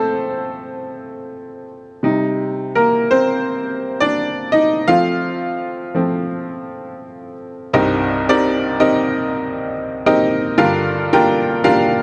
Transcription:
Already playing: F3 A3 C4 A4 C5
2.03 C3 G3 D#4
2.75 A#3 A#4
3.11 C4 C5
4.00 D4 D5
4.52 D#4 D#5
4.88 F3 A3 C4 F4 F5
5.95 F3 A3 C4
7.73 C2 G2 C4 D#4 G4 A#4 D#5
8.29 C4 D#4 G4 A#4 D5
8.80 C4 D#4 G4 A#4 D#5
10.06 C4 D#4 G4 A#4 D#5
10.58 G2 D3 D4 F4 G4 A#4 F5
11.13 D4 F4 G4 A#4 G5
11.64 D4 F4 G4 A#4 F5

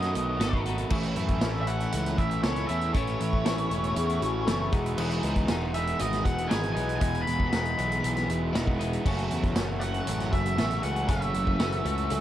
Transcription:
Already playing: F#2 B2 D#3 F#3 A3 B3 D#4 F#4 A4 D#5
0.02 snare, closed hi-hat
0.15 B1 A3 B3 F#4, closed hi-hat
0.40 G#1 D#3 F#3 A3 B3 D#4 F#4 A4, snare, closed hi-hat
0.53 kick
0.65 A3 B3 D#4 F#4 A4, closed hi-hat
0.69 F#3
0.78 closed hi-hat
0.90 A1 A2 E3 A3 C#4 E4, kick, crash
1.03 closed hi-hat
1.16 F#2 A3 C#4 E4, closed hi-hat
1.28 kick, closed hi-hat
1.41 A1 A2 E3 A3 C#4 E4, snare, closed hi-hat
1.61 E5
1.67 A3 C#4 E4 F#5, closed hi-hat
1.80 closed hi-hat
1.92 C#2 A2 E3 A3 C#4 E4, closed hi-hat
2.06 snare, closed hi-hat
2.17 A1 A3 C#4 E4 E5, kick, closed hi-hat
2.31 closed hi-hat
2.43 C#2 E3 A3 C#4 E4 C#5, snare, closed hi-hat
2.56 closed hi-hat
2.67 E2 A3 C#4 E4 E5, closed hi-hat
2.81 closed hi-hat
2.93 A1 A2 E3 A3 C#4 E4 C#5, kick, closed hi-hat
3.07 closed hi-hat
3.20 A1 A3 C#4 E4, closed hi-hat
3.33 kick
3.44 A1 A2 E3 A3 C#4 E4 A4, snare, closed hi-hat
3.58 closed hi-hat
3.70 E1 A3 C#4 E4, closed hi-hat
3.84 closed hi-hat
3.95 E2 A2 E3 A3 C#4 E4 G#4, closed hi-hat
4.09 closed hi-hat
4.21 A1 A3 C#4 E4 F#4, closed hi-hat
4.45 F#1 E3 A3 C#4 E4 A4, snare, closed hi-hat
4.71 E1 E2 B2 E3 G#3 B3 D#4 G#4, kick, closed hi-hat
4.86 closed hi-hat
4.97 E1 E2 B2 E3 G#3 B3 D#4, crash
5.11 closed hi-hat
5.23 C#2 E3 G#3 B3, closed hi-hat
5.36 kick, closed hi-hat
5.48 E1 E3 G#3 B3 D#4, snare, closed hi-hat
5.74 E3 G#3 B3 D#4 E5, closed hi-hat
5.87 closed hi-hat
5.99 G#1 E2 B2 E3 G#3 B3 D#5, closed hi-hat
6.13 snare, closed hi-hat
6.25 E1 E3 G#3 B3 F#5, kick, closed hi-hat
6.38 closed hi-hat
6.48 G#1 E3 G#3 B3 G#5, snare, closed hi-hat
6.52 D#4
6.63 closed hi-hat
6.72 B1 B3 D#4 G#5, closed hi-hat
6.77 E3 G#3
6.89 closed hi-hat
6.96 G#5
7.01 E1 E2 B2 E3 G#3 B3 D#4, kick, closed hi-hat
7.15 closed hi-hat
7.22 B5
7.26 E1 E3 G#3 B3, closed hi-hat
7.40 kick
7.48 B5
7.52 E1 E3 G#3 B3 D#4, snare, closed hi-hat
7.65 closed hi-hat
7.77 B1 E3 G#3 B3 D#4, closed hi-hat
7.92 closed hi-hat
8.02 B1 E2 B2 E3 G#3 B3, closed hi-hat
8.17 snare, closed hi-hat
8.29 E1 E3 G#3 B3, closed hi-hat
8.54 E1 E3 G#3 B3 D#4, snare, closed hi-hat
8.67 kick
8.79 E3 G#3 B3 D#4 E4, closed hi-hat
8.93 closed hi-hat
9.04 F#1 F#2 C#3 E3 F#3 A3 C#4 F#4, kick, crash
9.18 closed hi-hat
9.30 E2 F#3 A3 C#4 F#4, closed hi-hat
9.44 kick, closed hi-hat
9.56 F#1 F#2 C#3 E3 A3 C#4, snare, closed hi-hat
9.81 E3 F#3 A3 C#4 F#4 F#5, closed hi-hat
9.94 closed hi-hat
10.07 A1 F#2 C#3 F#3 A3 C#4 F#4, closed hi-hat
10.20 snare, closed hi-hat
10.32 F#1 F#3 A3 C#4 F#4 E5, kick, closed hi-hat
10.46 closed hi-hat
10.56 A1 C#3 E3 F#3 A3 C#4 F#4, snare, closed hi-hat
10.71 closed hi-hat
10.82 C#2 E3 F#3 A3 C#4 F#4 F#5, closed hi-hat
10.96 closed hi-hat
11.08 F#1 F#2 C#3 E3 F#3 A3 C#4 F#4 E5, kick, closed hi-hat
11.22 closed hi-hat
11.34 F#1 F#3 A3 C#4 F#4, closed hi-hat
11.47 kick
11.58 F#1 F#2 C#3 E3 A3 C#4 B4, snare, closed hi-hat
11.72 closed hi-hat
11.84 C#2 E3 F#3 A3 C#4 F#4, closed hi-hat
11.98 closed hi-hat
12.10 C#2 F#2 C#3 F#3 A3 C#4 F#4 A4, closed hi-hat

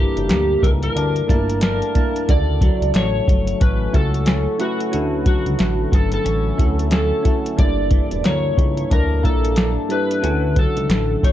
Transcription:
Already playing: G2 E3 A#3 D4 E4 G4 A4 A#4
0.17 F#1, closed hi-hat
0.29 D2 A#3, snare, clap, closed hi-hat
0.63 C#2 E3 A#4, kick, closed hi-hat
0.83 A#4, closed hi-hat
0.95 D2 D4, closed hi-hat
1.16 closed hi-hat
1.27 G1 A3 A#3 D4 E4 A5, kick, snare, closed hi-hat
1.34 A#3
1.50 closed hi-hat
1.61 D4 A#4, snare, clap, closed hi-hat
1.82 closed hi-hat
1.94 A#3 D4 E4 A5, kick, closed hi-hat
2.16 closed hi-hat
2.28 D2 C#3 E4 F#4 A4 D5, kick, closed hi-hat
2.61 F#3, kick, closed hi-hat
2.81 C#2, closed hi-hat
2.94 A1 A3 C#5, snare, clap, closed hi-hat
3.28 G1 F#3, kick, closed hi-hat
3.47 closed hi-hat
3.61 A1 C#4 B4, kick, closed hi-hat
3.93 C#2 A3 C#4 E4 F#4 A4, kick, closed hi-hat
4.14 closed hi-hat
4.26 C#4, snare, clap, closed hi-hat
4.58 A3 C#4 E4 F#4 B4, closed hi-hat
4.80 closed hi-hat
4.92 D2 D3 C#4 E4 F#4 A4, closed hi-hat
5.26 F#3 F#4, kick, closed hi-hat
5.46 C#2, closed hi-hat
5.59 A1 A3, snare, clap, closed hi-hat
5.92 G1 F#3 A4, kick, closed hi-hat
6.12 A4, closed hi-hat
6.24 A1 C#4, closed hi-hat
6.58 D2 A3 C#4 E4 F#4 A4, kick, closed hi-hat
6.79 closed hi-hat
6.91 C#4 A4, snare, clap, closed hi-hat
7.23 A3 C#4 E4 F#4 A4, kick, closed hi-hat
7.46 closed hi-hat
7.57 G1 G2 A#3 D4 E4 A4 D5, kick, closed hi-hat
7.91 E3, kick, closed hi-hat
8.11 E1, closed hi-hat
8.24 D2 A#3 C#5, snare, clap, closed hi-hat
8.57 C#2 E3, kick, closed hi-hat
8.77 closed hi-hat
8.91 D2 D4 A#4, kick, closed hi-hat
9.23 A#1 A#3 D4 E4 A4, kick, closed hi-hat
9.45 closed hi-hat
9.56 D4, snare, clap, closed hi-hat
9.89 G3 D4 E4 A4 B4, closed hi-hat
10.11 closed hi-hat
10.21 D2 D3 C#4 E4 F#4 G#4, closed hi-hat
10.30 A4
10.56 F#3 A4, kick, closed hi-hat
10.77 C#2, closed hi-hat
10.90 A1, snare, clap, closed hi-hat
11.23 G1 F#3 C#5, kick, closed hi-hat

